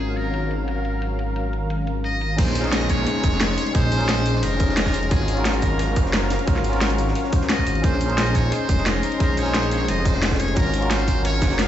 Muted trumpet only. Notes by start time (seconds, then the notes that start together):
Already playing: G#4
0.17 A#4
2.04 D#5
2.39 C5
2.73 D#5
2.90 C#5
3.75 C5
4.43 A#4
5.12 G#4
5.45 A#4
7.50 D#5
7.84 C5
8.18 D#5
8.35 C#5
8.53 C5
8.87 A#4
9.21 A#4
9.38 C#5
9.72 C#5
9.89 D#5
10.06 C5
10.40 C#5
10.57 A#4
10.91 C5
11.25 C#5
11.59 F5